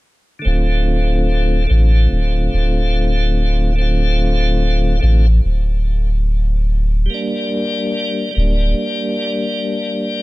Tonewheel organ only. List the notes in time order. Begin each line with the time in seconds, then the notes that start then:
0.39 D3 A3
0.45 C4 F4
1.64 D3 A3
1.70 C4 F4
3.73 D3 A3
3.78 C4 F4
4.99 D3 A3 C4
5.04 F4
7.06 G3
7.10 A#3
7.14 D4
8.31 G3 A#3
8.40 D4